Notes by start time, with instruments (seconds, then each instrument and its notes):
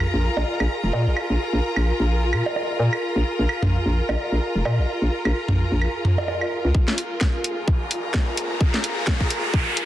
Already playing: string section F4 A#4 A#5, synth texture G#4
0.00 claves
0.14 fm bass A#1
0.37 fm bass A#1, high bongo
0.60 fm bass A#1, claves
0.84 fm bass F1
0.93 fm bass A#2, high bongo
1.07 fm bass A#1
1.17 claves
1.30 fm bass A#1
1.53 fm bass A#1
1.76 fm bass A#1, claves
2.00 fm bass A#1
2.33 fm bass A#2, claves
2.46 high bongo
2.56 high bongo
2.79 fm bass A#2
2.93 claves
3.16 fm bass A#1
3.39 fm bass A#1
3.49 claves
3.62 fm bass A#1, mid tom
3.86 fm bass A#1
4.09 fm bass A#1, high bongo, claves
4.32 fm bass A#1
4.55 fm bass F1
4.65 fm bass A#2, high bongo, claves
4.79 fm bass A#1
5.02 fm bass A#1
5.25 fm bass A#1, claves
5.48 fm bass A#1, mid tom
5.72 fm bass A#1
5.82 claves
6.05 mid tom
6.18 high bongo
6.28 high bongo
6.41 claves
6.65 fm bass C#2
6.74 synth texture G#4, kick, riser
6.88 snare
6.98 open hi-hat
7.21 kick, snare
7.44 open hi-hat
7.68 kick
7.81 string section A#5
7.91 open hi-hat
8.14 kick, snare
8.37 open hi-hat
8.61 kick
8.74 snare
8.84 open hi-hat
9.07 kick, snare
9.21 kick
9.30 open hi-hat
9.54 kick
9.77 open hi-hat